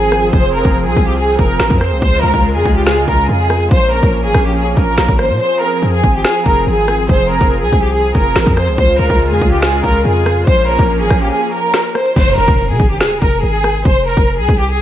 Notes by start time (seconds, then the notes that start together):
Already playing: G#1 F3 C4 G#4
0.12 cross-stick
0.33 F1 C5, kick
0.54 A#4
0.65 F1, kick
0.86 C2 G#4
0.97 C2, kick
1.07 G4
1.18 G#4
1.39 F1 A#4, kick
1.60 G#1, finger snap, snare
1.70 F2, kick
1.80 C5, cross-stick
1.92 C2
2.02 C#2 C#3 G#3 F4 C5, kick
2.22 C#2 A#4
2.34 C#2, kick
2.54 F2 G#4
2.66 C#2, kick
2.76 G4
2.86 G#4, finger snap, snare
3.08 C#2 A#4, kick
3.28 F2 G#4
3.50 cross-stick
3.71 A#1 F3 A#3 C#4 C5, kick
3.93 A#4
4.03 A#1, kick
4.24 G#1 G#4
4.34 A#1, kick, cross-stick
4.46 G4
4.55 G#4
4.77 A#1 A#4, kick
4.98 A#1, finger snap, snare
5.08 G#1, kick
5.19 C5, cross-stick
5.30 A#2
5.40 C4 G#4 C5, closed hi-hat
5.61 A#4, closed hi-hat
5.72 closed hi-hat
5.82 F2, closed hi-hat
5.94 G#4
6.04 G#1, kick
6.14 G4
6.25 G#4, finger snap, snare, closed hi-hat
6.46 F1 A#4, kick
6.56 closed hi-hat
6.67 G#1 G#4
6.88 cross-stick, closed hi-hat
7.09 F1 C5, kick, closed hi-hat
7.30 A#4
7.41 F1, kick, closed hi-hat
7.62 C2 G#4
7.73 C2, kick, closed hi-hat
7.83 G4
7.94 G#4
8.15 F1 A#4, kick, closed hi-hat
8.36 G#1, finger snap, snare
8.46 F2, kick, closed hi-hat
8.54 C5, cross-stick, closed hi-hat
8.61 closed hi-hat
8.68 C2, closed hi-hat
8.78 C#2 C#3 G#3 F4 C5, kick, closed hi-hat
8.98 C#2 A#4, closed hi-hat
9.10 C#2, kick, closed hi-hat
9.20 closed hi-hat
9.30 F2 G#4
9.42 C#2, kick
9.52 G4
9.62 G#4, finger snap, snare, closed hi-hat
9.84 C#2 A#4, kick
9.94 closed hi-hat
10.05 F2 G#4
10.26 cross-stick, closed hi-hat
10.47 A#1 F3 A#3 C#4 C5, kick, closed hi-hat
10.69 A#4
10.79 A#1, kick, closed hi-hat
11.00 G#1 G#4
11.10 A#1, kick, cross-stick, closed hi-hat
11.22 G4
11.31 G#4
11.53 A#4, closed hi-hat
11.74 finger snap, snare
11.85 closed hi-hat
11.90 closed hi-hat
11.95 C5, cross-stick, closed hi-hat
12.00 closed hi-hat
12.06 closed hi-hat
12.16 F1 C5, kick, closed hi-hat, crash, impact
12.37 F1 A#4, closed hi-hat
12.48 F1, kick, closed hi-hat
12.58 closed hi-hat
12.69 C3 G#4
12.80 G#1, kick
12.90 G4
13.01 G#4, finger snap, snare, closed hi-hat
13.22 F1 A#4, kick
13.32 closed hi-hat
13.43 G#1 G#4
13.64 cross-stick, closed hi-hat
13.85 F1 C5, kick, closed hi-hat
14.07 A#4
14.17 F1, kick, closed hi-hat
14.38 C2 G#4
14.49 C2, kick, closed hi-hat
14.59 G4
14.70 G#4